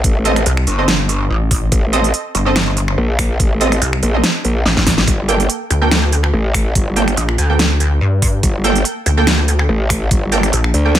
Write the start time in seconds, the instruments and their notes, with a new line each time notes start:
0.04 wobble bass A1, kick, closed hi-hat
0.25 synth stab C4 A4 D#5, closed hi-hat
0.36 finger snap, closed hi-hat
0.46 wobble bass C2, closed hi-hat
0.57 finger snap
0.67 wobble bass G1, closed hi-hat
0.78 synth stab C4 A4 D#5
0.88 snare, closed hi-hat
1.09 closed hi-hat
1.30 wobble bass A1
1.51 kick, open hi-hat
1.72 wobble bass A1, kick, closed hi-hat
1.93 synth stab C4 A4 D#5, closed hi-hat
2.04 closed hi-hat
2.14 closed hi-hat
2.35 wobble bass G1, closed hi-hat
2.46 synth stab C4 A4 D#5
2.56 finger snap, snare, closed hi-hat
2.77 closed hi-hat
2.88 finger snap
2.98 wobble bass A#1
3.19 finger snap, kick, open hi-hat
3.40 wobble bass A1, kick, closed hi-hat
3.61 synth stab C4 A4 D#5, closed hi-hat
3.72 finger snap, closed hi-hat
3.82 wobble bass C2, closed hi-hat
3.93 finger snap
4.03 wobble bass A#1, closed hi-hat
4.14 synth stab C4 A4 D#5
4.24 snare, closed hi-hat
4.45 wobble bass A#1, closed hi-hat
4.66 wobble bass A1, snare
4.77 kick, snare
4.87 kick, snare, open hi-hat
4.98 snare
5.08 wobble bass G1, kick, closed hi-hat
5.29 synth stab A#3 A4 G5, closed hi-hat
5.40 closed hi-hat
5.50 closed hi-hat
5.70 wobble bass D2, closed hi-hat
5.82 synth stab A#3 A4 G5
5.91 finger snap, snare, closed hi-hat
6.12 closed hi-hat
6.24 finger snap
6.33 wobble bass A1
6.54 finger snap, kick, open hi-hat
6.75 wobble bass G1, kick, closed hi-hat
6.96 synth stab A#3 A4 G5, closed hi-hat
7.08 finger snap, closed hi-hat
7.17 wobble bass A#1, closed hi-hat
7.29 finger snap
7.38 wobble bass D2, closed hi-hat
7.50 synth stab A#3 A4 G5
7.59 snare, closed hi-hat
7.80 closed hi-hat
8.01 wobble bass G2
8.22 kick, open hi-hat
8.43 wobble bass G1, kick, closed hi-hat
8.64 synth stab A#3 A4 G5, closed hi-hat
8.76 closed hi-hat
8.85 closed hi-hat
9.06 wobble bass D2, closed hi-hat
9.17 synth stab A#3 A4 G5
9.27 finger snap, snare, closed hi-hat
9.48 closed hi-hat
9.59 finger snap
9.69 wobble bass A1
9.90 finger snap, kick, open hi-hat
10.11 wobble bass G1, kick, closed hi-hat
10.32 synth stab A#3 A4 G5, closed hi-hat
10.43 finger snap, closed hi-hat
10.53 wobble bass A#1, closed hi-hat
10.64 finger snap
10.74 wobble bass D2, closed hi-hat
10.85 synth stab A#3 A4 G5
10.95 snare, closed hi-hat